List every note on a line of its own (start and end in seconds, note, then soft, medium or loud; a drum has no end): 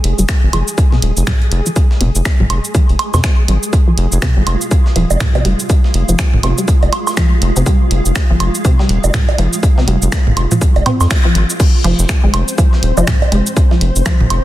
0.00 11.61 G#3 medium
0.00 3.76 G#4 medium
0.04 0.14 F1 loud
0.04 closed hi-hat loud
0.04 closed hi-hat medium
0.19 0.25 F1 medium
0.19 0.21 G3 medium
0.19 cabasa medium
0.29 finger snap loud
0.29 kick loud
0.29 snare loud
0.29 closed hi-hat medium
0.29 cabasa soft
0.43 0.50 G1 medium
0.53 0.63 F1 medium
0.53 0.57 F3 medium
0.53 closed hi-hat loud
0.53 closed hi-hat medium
0.53 low woodblock medium
0.68 cabasa medium
0.78 kick loud
0.78 closed hi-hat medium
0.78 cabasa soft
0.92 0.95 C3 loud
0.92 snare soft
1.02 1.12 D#1 loud
1.02 closed hi-hat medium
1.02 closed hi-hat loud
1.17 1.23 F1 loud
1.17 cabasa medium
1.27 1.31 G3 medium
1.27 finger snap loud
1.27 kick loud
1.27 snare loud
1.27 closed hi-hat medium
1.27 mid tom medium
1.27 cabasa soft
1.42 closed hi-hat soft
1.51 1.61 F1 medium
1.51 closed hi-hat medium
1.66 1.69 F3 medium
1.66 cabasa soft
1.76 kick loud
1.76 closed hi-hat medium
1.76 cabasa soft
1.91 snare soft
2.01 2.10 F1 loud
2.01 2.05 C3 loud
2.01 closed hi-hat loud
2.01 closed hi-hat medium
2.15 2.22 F1 medium
2.15 cabasa soft
2.25 finger snap medium
2.25 kick loud
2.25 snare loud
2.25 closed hi-hat medium
2.25 cabasa soft
2.40 2.46 G1 medium
2.40 2.43 G3 medium
2.40 mid tom medium
2.50 2.59 F1 medium
2.50 closed hi-hat medium
2.50 closed hi-hat loud
2.50 low woodblock medium
2.65 cabasa soft
2.75 2.78 F3 medium
2.75 kick loud
2.75 closed hi-hat medium
2.75 cabasa soft
2.89 2.96 F1 medium
2.89 closed hi-hat soft
2.99 closed hi-hat medium
2.99 low woodblock medium
3.14 3.20 F2 medium
3.14 3.16 C3 loud
3.14 snare soft
3.14 cabasa medium
3.14 low woodblock medium
3.24 finger snap medium
3.24 kick loud
3.24 snare loud
3.24 closed hi-hat medium
3.24 cabasa soft
3.48 3.58 G#1 medium
3.48 3.52 G3 medium
3.48 closed hi-hat loud
3.48 closed hi-hat medium
3.63 cabasa medium
3.73 11.63 F4 medium
3.73 kick loud
3.73 closed hi-hat medium
3.73 cabasa soft
3.88 3.90 F3 medium
3.98 4.07 F1 loud
3.98 closed hi-hat loud
3.98 closed hi-hat medium
4.12 4.19 F1 medium
4.12 cabasa medium
4.22 4.26 C3 loud
4.22 finger snap medium
4.22 kick loud
4.22 snare loud
4.22 closed hi-hat medium
4.22 cabasa soft
4.37 4.43 G1 medium
4.37 4.39 G3 medium
4.47 4.56 F1 medium
4.47 closed hi-hat medium
4.47 low woodblock medium
4.61 cabasa soft
4.71 kick loud
4.71 closed hi-hat medium
4.71 cabasa soft
4.86 snare soft
4.96 5.05 D#1 loud
4.96 5.00 F3 medium
4.96 closed hi-hat medium
5.11 5.17 F1 loud
5.11 high bongo medium
5.11 cabasa medium
5.20 finger snap medium
5.20 kick loud
5.20 snare loud
5.20 closed hi-hat medium
5.20 mid tom medium
5.20 cabasa soft
5.35 5.38 C3 loud
5.35 closed hi-hat soft
5.35 high bongo medium
5.45 5.54 F1 medium
5.45 5.49 G3 medium
5.45 closed hi-hat medium
5.60 cabasa medium
5.70 kick loud
5.70 closed hi-hat medium
5.70 cabasa soft
5.84 snare soft
5.94 6.04 F1 medium
5.94 closed hi-hat medium
6.09 6.15 F1 medium
6.09 6.11 F3 medium
6.09 cabasa medium
6.19 finger snap medium
6.19 kick loud
6.19 snare loud
6.19 closed hi-hat medium
6.19 cabasa soft
6.33 6.40 G1 medium
6.33 mid tom medium
6.43 6.53 F1 medium
6.43 6.47 C3 loud
6.43 closed hi-hat medium
6.43 low woodblock medium
6.58 6.61 G3 medium
6.58 cabasa soft
6.68 kick loud
6.68 closed hi-hat medium
6.68 cabasa soft
6.83 6.89 F1 medium
6.83 closed hi-hat soft
6.83 high bongo medium
6.93 closed hi-hat medium
6.93 low woodblock medium
7.07 snare soft
7.07 cabasa medium
7.07 low woodblock medium
7.17 7.21 F3 medium
7.17 finger snap medium
7.17 kick loud
7.17 snare loud
7.17 closed hi-hat medium
7.17 cabasa soft
7.42 7.51 F1 medium
7.42 closed hi-hat medium
7.56 7.63 F1 medium
7.56 7.59 C3 loud
7.56 cabasa medium
7.66 7.70 G3 medium
7.66 kick loud
7.66 closed hi-hat medium
7.66 cabasa soft
7.91 8.00 F1 medium
7.91 closed hi-hat medium
8.06 8.12 F1 medium
8.06 cabasa medium
8.16 finger snap medium
8.16 kick loud
8.16 snare loud
8.16 closed hi-hat medium
8.16 cabasa soft
8.30 8.37 G1 medium
8.30 8.33 F3 medium
8.40 8.50 F1 medium
8.40 closed hi-hat medium
8.40 low woodblock medium
8.55 cabasa medium
8.65 8.69 C3 loud
8.65 kick loud
8.65 closed hi-hat medium
8.65 cabasa soft
8.79 8.82 G3 medium
8.79 snare soft
8.89 8.99 D#1 medium
8.89 closed hi-hat medium
9.04 9.10 F1 loud
9.04 high bongo medium
9.04 cabasa medium
9.14 finger snap medium
9.14 kick medium
9.14 snare loud
9.14 closed hi-hat medium
9.14 mid tom medium
9.14 cabasa soft
9.29 closed hi-hat soft
9.29 high bongo medium
9.38 9.48 F1 medium
9.38 9.42 F3 medium
9.38 closed hi-hat medium
9.53 cabasa medium
9.63 kick loud
9.63 closed hi-hat medium
9.63 cabasa soft
9.78 9.80 C3 loud
9.78 snare soft
9.88 9.97 F1 loud
9.88 9.91 G3 medium
9.88 closed hi-hat medium
10.02 10.09 F1 medium
10.02 cabasa medium
10.12 finger snap medium
10.12 kick loud
10.12 snare loud
10.12 closed hi-hat medium
10.12 cabasa soft
10.27 10.33 G1 medium
10.27 mid tom medium
10.37 10.46 F1 medium
10.37 closed hi-hat medium
10.37 low woodblock medium
10.51 10.54 F3 medium
10.51 mid tom medium
10.51 cabasa medium
10.61 kick loud
10.61 closed hi-hat medium
10.61 cabasa soft
10.76 10.82 F1 medium
10.76 closed hi-hat soft
10.76 high bongo medium
10.86 10.92 C4 loud
10.86 closed hi-hat medium
10.86 mid tom medium
10.86 low woodblock medium
11.01 11.07 F2 medium
11.01 snare soft
11.01 cabasa medium
11.01 low woodblock medium
11.11 finger snap medium
11.11 kick loud
11.11 snare loud
11.11 closed hi-hat medium
11.11 cabasa soft
11.25 11.27 F3 medium
11.35 11.45 G#1 loud
11.35 closed hi-hat medium
11.50 cabasa medium
11.60 14.44 C4 medium
11.60 14.44 C5 medium
11.60 kick loud
11.60 closed hi-hat medium
11.60 crash loud
11.60 cabasa soft
11.84 11.94 F1 loud
11.84 11.87 F3 loud
11.84 closed hi-hat loud
11.84 closed hi-hat medium
11.99 12.05 F1 medium
11.99 cabasa medium
12.09 finger snap loud
12.09 kick loud
12.09 snare loud
12.09 closed hi-hat medium
12.09 cabasa soft
12.24 12.30 G1 medium
12.24 12.26 G#3 medium
12.34 12.43 F1 medium
12.34 closed hi-hat medium
12.34 closed hi-hat loud
12.34 low woodblock medium
12.48 cabasa medium
12.58 12.62 F3 medium
12.58 kick loud
12.58 closed hi-hat medium
12.58 cabasa soft
12.73 snare soft
12.83 12.92 D#1 loud
12.83 closed hi-hat loud
12.83 closed hi-hat medium
12.97 13.04 F1 loud
12.97 12.99 F3 loud
12.97 high bongo medium
12.97 cabasa medium
13.07 finger snap loud
13.07 kick loud
13.07 snare loud
13.07 closed hi-hat medium
13.07 mid tom medium
13.07 cabasa soft
13.22 closed hi-hat soft
13.22 high bongo medium
13.32 13.41 F1 medium
13.32 13.36 G#3 medium
13.32 closed hi-hat medium
13.47 cabasa medium
13.57 kick loud
13.57 closed hi-hat medium
13.57 cabasa soft
13.71 13.74 F3 medium
13.71 snare soft
13.81 13.91 F1 loud
13.81 closed hi-hat medium
13.81 closed hi-hat loud
13.96 14.02 F1 medium
13.96 cabasa medium
14.06 14.08 F3 loud
14.06 finger snap loud
14.06 kick loud
14.06 snare loud
14.06 closed hi-hat medium
14.06 cabasa soft
14.20 14.27 G1 medium
14.20 mid tom medium
14.30 14.40 F1 medium
14.30 closed hi-hat loud
14.30 closed hi-hat medium
14.30 low woodblock medium